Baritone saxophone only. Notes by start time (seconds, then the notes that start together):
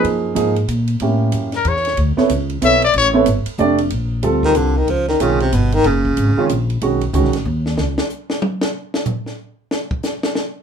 4.45 D#3
4.57 D3
4.77 D#3
4.90 F3
5.08 D#3
5.21 C#3
5.41 C3
5.54 B2
5.74 D#3
5.87 C#3